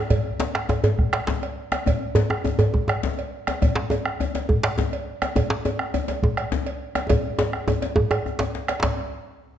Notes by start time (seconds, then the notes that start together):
0.10 bombo low, cowbell, djembe slap, djembe bass
0.40 cowbell, djembe slap, djembe tone
0.55 bombo rim, djembe slap
0.69 bombo rim, cowbell, djembe slap, djembe tone, djembe bass
0.84 cowbell, djembe slap, djembe tone, djembe bass
0.99 bombo rim, bombo low
1.13 bombo rim, cowbell, djembe slap
1.27 djembe slap, djembe tone, djembe bass
1.43 bombo rim, cowbell
1.72 bombo rim, cowbell, djembe slap, djembe tone
1.86 bombo rim, bombo low, cowbell, djembe bass
2.15 cowbell, djembe slap, djembe tone, djembe bass
2.30 bombo rim, djembe tone
2.44 bombo rim, cowbell, djembe tone, djembe bass
2.59 bombo rim, cowbell, djembe slap, djembe tone, djembe bass
2.74 bombo low, djembe tone
2.88 bombo rim, cowbell, djembe tone
3.03 djembe slap, djembe tone, djembe bass
3.19 cowbell
3.47 bombo rim, cowbell, djembe slap, djembe tone
3.62 bombo rim, bombo low, cowbell, djembe bass
3.75 djembe slap
3.90 cowbell, djembe tone
4.06 bombo rim
4.20 bombo rim, cowbell, djembe bass
4.35 bombo rim, cowbell, djembe slap, djembe tone
4.49 bombo low, djembe tone
4.63 bombo rim, cowbell, djembe slap
4.78 djembe slap, djembe tone, djembe bass
4.93 cowbell
5.22 bombo rim, cowbell, djembe slap, djembe tone
5.36 bombo rim, bombo low, cowbell, djembe tone, djembe bass
5.50 djembe slap
5.65 cowbell, djembe tone
5.79 bombo rim
5.94 bombo rim, cowbell, djembe bass
6.08 bombo rim, cowbell, djembe slap, djembe tone
6.23 bombo low, djembe tone
6.37 bombo rim, cowbell
6.52 djembe slap, djembe tone, djembe bass
6.66 cowbell
6.95 bombo rim, cowbell, djembe slap, djembe tone
7.09 bombo low, cowbell, djembe tone, djembe bass
7.39 bombo rim, cowbell, djembe slap, djembe tone
7.53 bombo rim
7.68 cowbell, djembe tone, djembe bass
7.82 cowbell, djembe slap, djembe tone
7.96 bombo low, djembe tone
8.11 bombo rim, cowbell, djembe slap, djembe tone
8.26 bombo rim, djembe bass
8.39 bombo rim, cowbell, djembe slap, djembe bass
8.55 djembe slap
8.68 bombo rim, cowbell, djembe slap
8.83 bombo low, cowbell, djembe slap, djembe bass